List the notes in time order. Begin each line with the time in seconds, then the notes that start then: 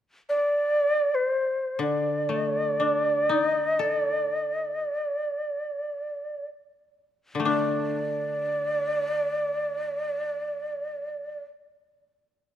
0.29 D5
1.15 C5
1.79 D3 D5
2.29 A3
2.80 D4
3.29 D#4
3.50 D#5
3.79 A4
3.85 D5
4.43 D#5
4.77 D5
7.35 D3
7.40 A3
7.45 D4 D5